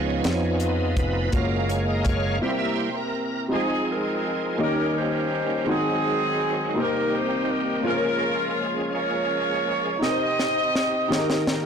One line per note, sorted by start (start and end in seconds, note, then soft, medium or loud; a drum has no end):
0.00 0.21 C#2 loud
0.00 0.21 C#3 medium
0.00 0.95 F3 medium
0.00 0.96 B3 soft
0.00 1.28 B3 medium
0.00 0.95 D#4 medium
0.00 1.29 F4 medium
0.00 1.30 G#4 medium
0.00 0.57 C#5 medium
0.00 1.30 C#5 medium
0.00 1.33 C#5 medium
0.00 2.38 F5 medium
0.00 1.30 G#5 medium
0.24 0.93 F2 medium
0.24 snare loud
0.24 closed hi-hat medium
0.60 closed hi-hat medium
0.96 1.30 F1 medium
0.96 1.29 F3 soft
0.96 1.30 B3 soft
0.96 1.29 D#4 soft
0.96 1.14 B4 medium
0.96 kick loud
0.96 closed hi-hat medium
1.15 1.34 B4 medium
1.31 2.38 F#1 medium
1.31 2.38 G#3 soft
1.31 2.38 A#3 medium
1.31 2.41 F4 medium
1.31 2.42 F#4 medium
1.31 2.41 C#5 medium
1.31 2.42 C#5 medium
1.31 2.40 A#5 medium
1.31 kick loud
1.31 closed hi-hat medium
1.35 2.39 A#3 soft
1.35 1.72 A#4 medium
1.35 2.39 F5 medium
1.68 1.86 C#5 medium
1.68 closed hi-hat medium
1.88 2.04 D#5 medium
2.04 2.38 C#5 medium
2.04 kick medium
2.04 closed hi-hat medium
2.40 3.46 C3 medium
2.40 2.90 G3 medium
2.40 3.49 A#3 medium
2.40 2.90 A#3 medium
2.40 3.50 E4 medium
2.40 2.90 E4 medium
2.40 3.50 G4 medium
2.40 3.49 C5 medium
2.40 2.51 C5 medium
2.40 3.50 C5 medium
2.40 3.49 E5 medium
2.40 3.49 G5 medium
2.40 3.49 A#5 medium
2.59 2.78 E5 medium
2.76 2.95 C5 medium
2.97 3.47 A#4 medium
3.48 4.60 F3 medium
3.48 3.56 G3 medium
3.48 4.58 C4 medium
3.48 4.57 D#4 medium
3.48 4.60 D#4 medium
3.48 4.59 F4 medium
3.48 4.60 G#4 medium
3.48 4.60 C5 medium
3.53 4.60 G#3 medium
3.53 4.61 G#3 medium
3.53 4.60 C4 medium
3.53 4.56 C4 medium
3.53 3.89 D#4 medium
3.53 3.86 G#4 medium
3.90 4.57 D#4 medium
3.90 4.61 A#4 medium
4.57 5.66 D#3 medium
4.57 5.63 D#3 medium
4.57 5.67 G3 medium
4.57 5.66 A#3 medium
4.57 5.67 A#3 medium
4.57 5.67 C#4 medium
4.57 5.65 D#4 medium
4.57 4.65 F4 medium
4.57 5.68 G4 medium
4.57 5.68 D#5 medium
4.62 5.65 C#4 medium
4.62 4.97 G4 medium
4.62 5.70 G4 medium
4.62 4.94 A#4 medium
4.99 5.65 G4 medium
4.99 5.69 C5 medium
5.65 6.72 D#3 medium
5.65 6.76 D#3 medium
5.65 6.76 F#3 medium
5.65 6.75 G#3 medium
5.65 6.73 C4 medium
5.65 6.75 C4 medium
5.65 6.74 D#4 medium
5.65 6.75 F#4 medium
5.65 6.76 F#4 medium
5.65 6.76 C5 medium
5.71 6.74 C4 medium
5.71 6.78 G#4 loud
6.74 7.80 C3 medium
6.74 7.85 D#3 medium
6.74 7.84 G3 medium
6.74 7.78 A#3 medium
6.74 7.83 A#3 medium
6.74 7.84 C4 medium
6.74 7.85 C4 medium
6.74 7.84 D#4 medium
6.74 6.82 F#4 medium
6.74 7.85 G4 medium
6.78 7.82 D#4 medium
6.78 7.82 G4 medium
6.78 7.14 A#4 medium
6.78 7.85 C5 medium
6.82 7.88 G4 medium
7.15 7.50 C5 loud
7.50 7.85 A#4 medium
7.80 8.89 C#3 medium
7.80 9.95 A#3 medium
7.80 9.96 C#4 medium
7.80 9.97 F4 medium
7.84 9.98 F3 medium
7.84 9.98 G#3 medium
7.84 9.97 A#3 medium
7.84 9.98 C#4 medium
7.84 8.90 F4 medium
7.84 9.98 G#4 medium
7.84 8.64 A#4 loud
7.84 7.92 C5 medium
7.94 10.02 C#5 medium
8.95 9.99 F4 medium
8.95 9.99 A#4 medium
8.95 9.99 C#5 loud
9.99 11.06 C3 medium
9.99 11.11 C4 medium
9.99 11.07 D#4 medium
9.99 11.10 D#4 medium
9.99 11.08 G4 medium
9.99 snare medium
10.03 11.10 G4 medium
10.03 11.44 G4 medium
10.03 10.09 A#4 medium
10.03 11.44 C5 medium
10.03 11.47 D#5 loud
10.10 11.15 C5 medium
10.39 snare medium
10.75 snare medium
11.08 11.66 D#3 medium
11.08 11.66 A#3 medium
11.08 11.66 D#4 medium
11.08 11.66 G4 medium
11.08 11.18 G#4 medium
11.08 snare medium
11.18 11.66 A#4 medium
11.30 snare medium
11.47 snare medium